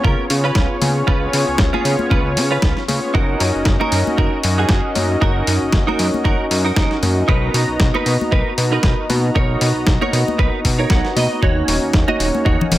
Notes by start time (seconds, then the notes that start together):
Already playing: B3 C#4 F4 G#4 C#5
0.04 C#2 C#4 F4 A#4, kick
0.30 C#3, open hi-hat
0.43 B3 C#4 F4 G#4 B4 C#5
0.55 C#2, kick, snare
0.82 C#3, open hi-hat, high conga
1.07 C#2 B3 C#4 F4 G#4 B4 C#5, kick
1.33 C#3, open hi-hat
1.48 C#2
1.58 C#2, kick, snare
1.73 C#4 F4 G#4, high conga
1.85 C#3, open hi-hat
1.99 high conga
2.10 C#2 C#4 F4 B4, kick
2.36 C#3, open hi-hat
2.51 C#4 F4 B4
2.62 C#2, kick, snare
2.77 snare
2.88 C#3 B3 C#4 F4 G#4 C#5, open hi-hat, high conga
3.14 F#1 C#4 D#4 F#4 A#4 D#5, kick
3.40 F#2, open hi-hat
3.55 F#1
3.65 F#1, kick, snare
3.80 D#4 F#4 A#4, high conga
3.92 F#2, open hi-hat
4.07 high conga
4.18 F#1 D#4 F#4 A#4, kick
4.43 F#2, open hi-hat
4.58 C#4 D#4 F#4 G#4 A#4 D#5
4.69 F#1, kick, snare
4.95 F#2, open hi-hat, high conga
5.21 F#1 C#4 D#4 F#4 A#4 D#5, kick
5.47 F#2, open hi-hat
5.62 F#1
5.73 F#1, kick, snare
5.87 D#4 F#4 A#4, high conga
5.99 F#2, open hi-hat
6.14 high conga
6.24 F#1 D#4 F#4 A#4, kick
6.51 F#2, open hi-hat
6.65 C#4 D#4 F#4 A#4 D#5
6.76 F#1, kick, snare
6.91 snare
7.03 F#2, open hi-hat, high conga
7.28 B1 B3 D#4 F#4 A#4 B4 D#5 A#5, kick
7.54 B2, open hi-hat
7.68 B1
7.80 B1, kick, snare
7.94 D#4 A#4 B4, high conga
8.06 B2, open hi-hat
8.21 high conga
8.32 B1 D#4 A#4 B4, kick
8.58 B2, open hi-hat
8.71 B3 D#4 F#4 A#4 B4 D#5 A#5
8.83 B1, kick, snare
9.10 B2, open hi-hat, high conga
9.34 B1 B3 D#4 F#4 A#4 C#5 D#5 A#5, kick
9.61 B2, open hi-hat
9.75 B1
9.87 B1, kick, snare
10.01 D#4 A#4 C#5, high conga
10.13 B2, open hi-hat
10.28 high conga
10.38 B1 D#4 A#4 B4, kick
10.65 B2, kick, open hi-hat
10.78 B3 D#4 F#4 A#4 C#5 D#5 A#5
10.90 B1 F#5, kick, snare
11.05 snare
11.16 B2 D#5, open hi-hat, high conga
11.41 D#2 A#3 C#4 D#4 F#4 C#5, kick
11.68 D#1, open hi-hat
11.83 D#2
11.93 D#2, kick, snare
12.08 D#4 F#4 D#5, high conga
12.20 D#1, open hi-hat
12.35 high conga
12.45 D#2 D#4 F#4 C#5, kick
12.61 low conga
12.72 D#1, open hi-hat, low conga